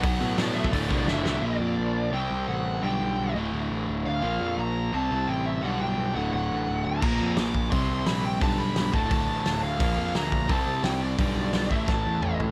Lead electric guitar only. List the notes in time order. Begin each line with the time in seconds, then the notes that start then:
0.03 F#5
0.38 D5
0.55 E5
0.72 D5
0.89 C5
0.99 D5
1.08 E5
1.43 D5
2.13 G5
2.48 F#5
2.84 G5
4.06 F5
4.59 A#5
4.94 A5
5.27 G5
5.46 E5
5.63 F#5
5.81 G5
6.15 F#5
6.33 F#5
6.85 A#5
7.38 D6
7.71 C6
8.06 B5
8.25 G5
8.42 A5
8.59 B5
8.93 A5
9.10 A5
9.63 F5
10.15 A#5
10.50 A5
10.84 G5
11.01 D5
11.70 E5
11.86 A5